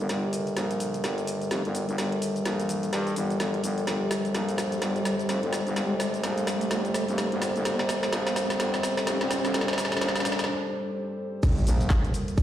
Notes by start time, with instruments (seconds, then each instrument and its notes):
Already playing: analog synth pad G3 G4 A4 A#4, riser
0.00 shaker
0.09 fm bass G1, snare, closed hi-hat, shaker
0.33 open hi-hat, shaker
0.47 closed hi-hat, shaker
0.57 fm bass A#1, snare, closed hi-hat, shaker
0.71 closed hi-hat, shaker
0.80 open hi-hat, shaker
0.94 closed hi-hat, shaker
1.04 fm bass G1, snare, closed hi-hat, shaker
1.18 closed hi-hat, shaker
1.27 open hi-hat, shaker
1.41 closed hi-hat, shaker
1.51 fm bass F1, snare, closed hi-hat, shaker
1.65 fm bass G1, closed hi-hat
1.75 open hi-hat, shaker
1.89 fm bass G1, closed hi-hat, shaker
1.98 fm bass G1, snare, closed hi-hat, shaker
2.12 closed hi-hat
2.22 open hi-hat, shaker
2.36 closed hi-hat, shaker
2.45 fm bass A#1, snare, closed hi-hat, shaker
2.60 closed hi-hat, shaker
2.69 open hi-hat, shaker
2.83 closed hi-hat, shaker
2.93 fm bass G2, snare, closed hi-hat, shaker
3.07 closed hi-hat, shaker
3.16 fm bass G1, open hi-hat, shaker
3.30 closed hi-hat, shaker
3.40 fm bass G1, snare, closed hi-hat, shaker
3.54 closed hi-hat
3.64 fm bass G1, open hi-hat, shaker
3.78 closed hi-hat, shaker
3.87 fm bass G1, analog synth pad C5, snare, closed hi-hat, shaker
4.11 snare, open hi-hat, shaker
4.25 closed hi-hat, shaker
4.34 fm bass A#1, snare, closed hi-hat, shaker
4.49 closed hi-hat, shaker
4.58 snare, open hi-hat, shaker
4.72 closed hi-hat, shaker
4.82 fm bass G1, snare, closed hi-hat, shaker
4.96 closed hi-hat, shaker
5.05 snare, open hi-hat, shaker
5.19 closed hi-hat, shaker
5.29 fm bass F1, snare, closed hi-hat, shaker
5.43 fm bass G1, closed hi-hat
5.53 snare, open hi-hat, shaker
5.67 fm bass G1, closed hi-hat, shaker
5.76 fm bass G1, snare, closed hi-hat, shaker
6.00 snare, open hi-hat, shaker
6.14 closed hi-hat, shaker
6.23 fm bass A#1, snare, closed hi-hat, shaker
6.38 closed hi-hat, shaker
6.47 snare, open hi-hat, shaker
6.61 closed hi-hat, shaker
6.71 fm bass G1, snare, closed hi-hat, shaker
6.85 closed hi-hat, shaker
6.94 snare, open hi-hat, shaker
7.08 fm bass F1, closed hi-hat, shaker
7.18 snare, closed hi-hat, shaker
7.32 fm bass G1, closed hi-hat
7.42 snare, open hi-hat, shaker
7.56 fm bass G1, closed hi-hat, shaker
7.65 fm bass G1, snare, closed hi-hat, shaker
7.79 snare
7.89 snare, open hi-hat, shaker
8.03 snare, closed hi-hat, shaker
8.12 fm bass A#1, snare, closed hi-hat, shaker
8.27 snare, closed hi-hat, shaker
8.36 snare, open hi-hat, shaker
8.50 snare, closed hi-hat, shaker
8.60 fm bass G1, snare, closed hi-hat, shaker
8.74 snare, closed hi-hat, shaker
8.83 snare, open hi-hat, shaker
8.97 snare, closed hi-hat, shaker
9.07 fm bass F1, snare, closed hi-hat, shaker
9.21 fm bass G1, snare, closed hi-hat
9.31 snare, open hi-hat, shaker
9.45 fm bass G1, snare, closed hi-hat, shaker
9.54 fm bass G1, snare, closed hi-hat, shaker
9.61 snare
9.68 snare, closed hi-hat, shaker
9.73 snare
9.78 snare, open hi-hat, shaker
9.85 snare
9.92 snare, closed hi-hat, shaker
9.97 snare
10.01 fm bass A#1, snare, closed hi-hat, shaker
10.08 snare
10.16 snare, open hi-hat, shaker
10.20 snare
10.25 snare, open hi-hat, shaker
10.32 snare
10.39 snare, closed hi-hat, shaker
10.44 snare
11.43 fm bass G1, analog synth pad G3 G4 A4 A#4, kick, closed hi-hat, crash, impact, shaker
11.58 shaker
11.67 fm bass A#1, snare, open hi-hat, shaker
11.80 closed hi-hat, shaker
11.90 kick, snare, clap, closed hi-hat, shaker
12.05 closed hi-hat, shaker
12.14 open hi-hat, shaker
12.28 closed hi-hat, shaker
12.38 kick, closed hi-hat, shaker